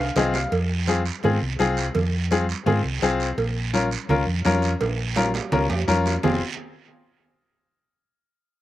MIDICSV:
0, 0, Header, 1, 4, 480
1, 0, Start_track
1, 0, Key_signature, -4, "minor"
1, 0, Tempo, 357143
1, 702, Time_signature, 4, 2, 24, 8
1, 11584, End_track
2, 0, Start_track
2, 0, Title_t, "Upright piano"
2, 0, Program_c, 0, 0
2, 0, Note_on_c, 0, 77, 66
2, 208, Note_off_c, 0, 77, 0
2, 220, Note_on_c, 0, 60, 90
2, 222, Note_on_c, 0, 75, 74
2, 224, Note_on_c, 0, 65, 89
2, 231, Note_on_c, 0, 68, 89
2, 445, Note_off_c, 0, 75, 0
2, 464, Note_on_c, 0, 77, 76
2, 473, Note_off_c, 0, 60, 0
2, 475, Note_off_c, 0, 65, 0
2, 478, Note_off_c, 0, 68, 0
2, 687, Note_off_c, 0, 77, 0
2, 1175, Note_on_c, 0, 60, 82
2, 1182, Note_on_c, 0, 65, 75
2, 1192, Note_on_c, 0, 68, 85
2, 1347, Note_off_c, 0, 60, 0
2, 1351, Note_off_c, 0, 65, 0
2, 1356, Note_off_c, 0, 68, 0
2, 1665, Note_on_c, 0, 60, 73
2, 1668, Note_on_c, 0, 65, 69
2, 1676, Note_on_c, 0, 68, 80
2, 1832, Note_off_c, 0, 60, 0
2, 1834, Note_off_c, 0, 65, 0
2, 1838, Note_off_c, 0, 68, 0
2, 2141, Note_on_c, 0, 60, 81
2, 2141, Note_on_c, 0, 65, 83
2, 2152, Note_on_c, 0, 68, 99
2, 2479, Note_off_c, 0, 60, 0
2, 2479, Note_off_c, 0, 65, 0
2, 2484, Note_off_c, 0, 68, 0
2, 3107, Note_on_c, 0, 60, 80
2, 3110, Note_on_c, 0, 65, 74
2, 3114, Note_on_c, 0, 68, 82
2, 3274, Note_off_c, 0, 60, 0
2, 3275, Note_off_c, 0, 65, 0
2, 3277, Note_off_c, 0, 68, 0
2, 3575, Note_on_c, 0, 60, 72
2, 3579, Note_on_c, 0, 65, 74
2, 3590, Note_on_c, 0, 68, 87
2, 3748, Note_off_c, 0, 60, 0
2, 3750, Note_off_c, 0, 65, 0
2, 3755, Note_off_c, 0, 68, 0
2, 4063, Note_on_c, 0, 60, 97
2, 4068, Note_on_c, 0, 65, 81
2, 4072, Note_on_c, 0, 68, 91
2, 4400, Note_off_c, 0, 60, 0
2, 4403, Note_off_c, 0, 65, 0
2, 4405, Note_off_c, 0, 68, 0
2, 5019, Note_on_c, 0, 61, 85
2, 5021, Note_on_c, 0, 65, 81
2, 5034, Note_on_c, 0, 70, 89
2, 5190, Note_off_c, 0, 61, 0
2, 5191, Note_off_c, 0, 65, 0
2, 5198, Note_off_c, 0, 70, 0
2, 5505, Note_on_c, 0, 61, 81
2, 5509, Note_on_c, 0, 65, 83
2, 5511, Note_on_c, 0, 70, 90
2, 5673, Note_off_c, 0, 61, 0
2, 5675, Note_off_c, 0, 65, 0
2, 5676, Note_off_c, 0, 70, 0
2, 5979, Note_on_c, 0, 61, 95
2, 5986, Note_on_c, 0, 65, 86
2, 5993, Note_on_c, 0, 70, 100
2, 6318, Note_off_c, 0, 61, 0
2, 6322, Note_off_c, 0, 65, 0
2, 6325, Note_off_c, 0, 70, 0
2, 6936, Note_on_c, 0, 61, 74
2, 6941, Note_on_c, 0, 65, 86
2, 6947, Note_on_c, 0, 70, 95
2, 7108, Note_off_c, 0, 61, 0
2, 7110, Note_off_c, 0, 65, 0
2, 7114, Note_off_c, 0, 70, 0
2, 7421, Note_on_c, 0, 61, 78
2, 7422, Note_on_c, 0, 65, 69
2, 7429, Note_on_c, 0, 70, 94
2, 7590, Note_off_c, 0, 61, 0
2, 7591, Note_off_c, 0, 65, 0
2, 7594, Note_off_c, 0, 70, 0
2, 7898, Note_on_c, 0, 61, 94
2, 7904, Note_on_c, 0, 65, 82
2, 7904, Note_on_c, 0, 70, 99
2, 8236, Note_off_c, 0, 61, 0
2, 8240, Note_off_c, 0, 65, 0
2, 8240, Note_off_c, 0, 70, 0
2, 8378, Note_on_c, 0, 65, 66
2, 8380, Note_on_c, 0, 68, 79
2, 8383, Note_on_c, 0, 60, 77
2, 8604, Note_off_c, 0, 65, 0
2, 8604, Note_off_c, 0, 68, 0
2, 8606, Note_off_c, 0, 60, 0
2, 11584, End_track
3, 0, Start_track
3, 0, Title_t, "Fingered electric bass"
3, 0, Program_c, 1, 33
3, 215, Note_on_c, 1, 36, 90
3, 602, Note_off_c, 1, 36, 0
3, 699, Note_on_c, 1, 41, 113
3, 1469, Note_off_c, 1, 41, 0
3, 1665, Note_on_c, 1, 44, 99
3, 1856, Note_off_c, 1, 44, 0
3, 1910, Note_on_c, 1, 36, 79
3, 2100, Note_off_c, 1, 36, 0
3, 2150, Note_on_c, 1, 36, 96
3, 2532, Note_off_c, 1, 36, 0
3, 2621, Note_on_c, 1, 41, 107
3, 3391, Note_off_c, 1, 41, 0
3, 3576, Note_on_c, 1, 44, 120
3, 3772, Note_off_c, 1, 44, 0
3, 3815, Note_on_c, 1, 36, 91
3, 4011, Note_off_c, 1, 36, 0
3, 4061, Note_on_c, 1, 36, 99
3, 4447, Note_off_c, 1, 36, 0
3, 4538, Note_on_c, 1, 34, 112
3, 5309, Note_off_c, 1, 34, 0
3, 5494, Note_on_c, 1, 37, 109
3, 5691, Note_off_c, 1, 37, 0
3, 5736, Note_on_c, 1, 41, 87
3, 5932, Note_off_c, 1, 41, 0
3, 5985, Note_on_c, 1, 41, 101
3, 6369, Note_off_c, 1, 41, 0
3, 6466, Note_on_c, 1, 34, 104
3, 7233, Note_off_c, 1, 34, 0
3, 7418, Note_on_c, 1, 37, 112
3, 7613, Note_off_c, 1, 37, 0
3, 7655, Note_on_c, 1, 41, 87
3, 7850, Note_off_c, 1, 41, 0
3, 7897, Note_on_c, 1, 41, 100
3, 8283, Note_off_c, 1, 41, 0
3, 8378, Note_on_c, 1, 29, 106
3, 8604, Note_off_c, 1, 29, 0
3, 11584, End_track
4, 0, Start_track
4, 0, Title_t, "Drums"
4, 211, Note_on_c, 9, 73, 74
4, 213, Note_on_c, 9, 56, 64
4, 213, Note_on_c, 9, 65, 71
4, 219, Note_on_c, 9, 63, 72
4, 219, Note_on_c, 9, 64, 62
4, 345, Note_off_c, 9, 73, 0
4, 347, Note_off_c, 9, 56, 0
4, 347, Note_off_c, 9, 65, 0
4, 354, Note_off_c, 9, 63, 0
4, 354, Note_off_c, 9, 64, 0
4, 455, Note_on_c, 9, 66, 73
4, 455, Note_on_c, 9, 73, 68
4, 589, Note_off_c, 9, 66, 0
4, 589, Note_off_c, 9, 73, 0
4, 700, Note_on_c, 9, 56, 100
4, 700, Note_on_c, 9, 74, 70
4, 703, Note_on_c, 9, 63, 34
4, 834, Note_off_c, 9, 56, 0
4, 835, Note_off_c, 9, 74, 0
4, 838, Note_off_c, 9, 63, 0
4, 1174, Note_on_c, 9, 73, 73
4, 1179, Note_on_c, 9, 63, 79
4, 1308, Note_off_c, 9, 73, 0
4, 1313, Note_off_c, 9, 63, 0
4, 1418, Note_on_c, 9, 73, 64
4, 1553, Note_off_c, 9, 73, 0
4, 1651, Note_on_c, 9, 74, 65
4, 1660, Note_on_c, 9, 56, 76
4, 1671, Note_on_c, 9, 63, 31
4, 1671, Note_on_c, 9, 64, 79
4, 1785, Note_off_c, 9, 74, 0
4, 1795, Note_off_c, 9, 56, 0
4, 1805, Note_off_c, 9, 63, 0
4, 1805, Note_off_c, 9, 64, 0
4, 2136, Note_on_c, 9, 73, 69
4, 2150, Note_on_c, 9, 63, 74
4, 2271, Note_off_c, 9, 73, 0
4, 2285, Note_off_c, 9, 63, 0
4, 2378, Note_on_c, 9, 73, 68
4, 2513, Note_off_c, 9, 73, 0
4, 2616, Note_on_c, 9, 56, 96
4, 2621, Note_on_c, 9, 74, 76
4, 2628, Note_on_c, 9, 63, 37
4, 2628, Note_on_c, 9, 64, 69
4, 2751, Note_off_c, 9, 56, 0
4, 2755, Note_off_c, 9, 74, 0
4, 2762, Note_off_c, 9, 63, 0
4, 2762, Note_off_c, 9, 64, 0
4, 3101, Note_on_c, 9, 73, 72
4, 3109, Note_on_c, 9, 63, 81
4, 3235, Note_off_c, 9, 73, 0
4, 3243, Note_off_c, 9, 63, 0
4, 3347, Note_on_c, 9, 73, 70
4, 3482, Note_off_c, 9, 73, 0
4, 3581, Note_on_c, 9, 56, 83
4, 3583, Note_on_c, 9, 63, 29
4, 3583, Note_on_c, 9, 64, 90
4, 3588, Note_on_c, 9, 74, 68
4, 3715, Note_off_c, 9, 56, 0
4, 3718, Note_off_c, 9, 63, 0
4, 3718, Note_off_c, 9, 64, 0
4, 3722, Note_off_c, 9, 74, 0
4, 4063, Note_on_c, 9, 73, 73
4, 4065, Note_on_c, 9, 63, 68
4, 4197, Note_off_c, 9, 73, 0
4, 4199, Note_off_c, 9, 63, 0
4, 4301, Note_on_c, 9, 73, 66
4, 4435, Note_off_c, 9, 73, 0
4, 4541, Note_on_c, 9, 56, 93
4, 4541, Note_on_c, 9, 63, 35
4, 4541, Note_on_c, 9, 74, 67
4, 4676, Note_off_c, 9, 56, 0
4, 4676, Note_off_c, 9, 63, 0
4, 4676, Note_off_c, 9, 74, 0
4, 5022, Note_on_c, 9, 73, 74
4, 5024, Note_on_c, 9, 63, 82
4, 5157, Note_off_c, 9, 73, 0
4, 5158, Note_off_c, 9, 63, 0
4, 5259, Note_on_c, 9, 73, 71
4, 5394, Note_off_c, 9, 73, 0
4, 5499, Note_on_c, 9, 56, 78
4, 5501, Note_on_c, 9, 74, 69
4, 5516, Note_on_c, 9, 63, 36
4, 5516, Note_on_c, 9, 64, 79
4, 5634, Note_off_c, 9, 56, 0
4, 5635, Note_off_c, 9, 74, 0
4, 5650, Note_off_c, 9, 63, 0
4, 5650, Note_off_c, 9, 64, 0
4, 5976, Note_on_c, 9, 73, 77
4, 5983, Note_on_c, 9, 66, 74
4, 5995, Note_on_c, 9, 63, 86
4, 6110, Note_off_c, 9, 73, 0
4, 6117, Note_off_c, 9, 66, 0
4, 6130, Note_off_c, 9, 63, 0
4, 6212, Note_on_c, 9, 73, 64
4, 6347, Note_off_c, 9, 73, 0
4, 6459, Note_on_c, 9, 74, 70
4, 6460, Note_on_c, 9, 56, 105
4, 6460, Note_on_c, 9, 65, 73
4, 6470, Note_on_c, 9, 63, 34
4, 6593, Note_off_c, 9, 74, 0
4, 6595, Note_off_c, 9, 56, 0
4, 6595, Note_off_c, 9, 65, 0
4, 6604, Note_off_c, 9, 63, 0
4, 6931, Note_on_c, 9, 73, 84
4, 6937, Note_on_c, 9, 66, 101
4, 6944, Note_on_c, 9, 63, 87
4, 7065, Note_off_c, 9, 73, 0
4, 7071, Note_off_c, 9, 66, 0
4, 7078, Note_off_c, 9, 63, 0
4, 7177, Note_on_c, 9, 73, 65
4, 7188, Note_on_c, 9, 66, 99
4, 7311, Note_off_c, 9, 73, 0
4, 7322, Note_off_c, 9, 66, 0
4, 7417, Note_on_c, 9, 74, 73
4, 7421, Note_on_c, 9, 56, 77
4, 7421, Note_on_c, 9, 66, 81
4, 7428, Note_on_c, 9, 63, 36
4, 7428, Note_on_c, 9, 64, 77
4, 7552, Note_off_c, 9, 74, 0
4, 7555, Note_off_c, 9, 56, 0
4, 7555, Note_off_c, 9, 66, 0
4, 7563, Note_off_c, 9, 63, 0
4, 7563, Note_off_c, 9, 64, 0
4, 7659, Note_on_c, 9, 66, 107
4, 7794, Note_off_c, 9, 66, 0
4, 7903, Note_on_c, 9, 73, 69
4, 7911, Note_on_c, 9, 63, 84
4, 8037, Note_off_c, 9, 73, 0
4, 8045, Note_off_c, 9, 63, 0
4, 8141, Note_on_c, 9, 66, 72
4, 8142, Note_on_c, 9, 73, 67
4, 8275, Note_off_c, 9, 66, 0
4, 8277, Note_off_c, 9, 73, 0
4, 8377, Note_on_c, 9, 66, 104
4, 8382, Note_on_c, 9, 74, 92
4, 8388, Note_on_c, 9, 64, 98
4, 8511, Note_off_c, 9, 66, 0
4, 8517, Note_off_c, 9, 74, 0
4, 8523, Note_off_c, 9, 64, 0
4, 11584, End_track
0, 0, End_of_file